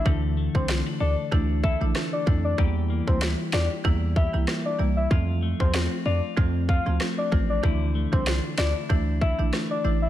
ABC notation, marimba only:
X:1
M:4/4
L:1/16
Q:"Swing 16ths" 1/4=95
K:Dm
V:1 name="Marimba"
[E,A,DE]3 [E,A,DE] z4 [E,A,DE]3 [E,A,DE] z2 [E,A,DE] z | [E,G,B,E]3 [E,G,B,E] z4 [E,G,B,E]3 [E,G,B,E] z2 [E,G,B,E] z | [F,A,CF]3 [F,A,CF] z4 [F,A,CF]3 [F,A,CF] z2 [F,A,CF] z | [E,A,DE]3 [E,A,DE] z4 [E,A,DE]3 [E,A,DE] z2 [E,A,DE] z |]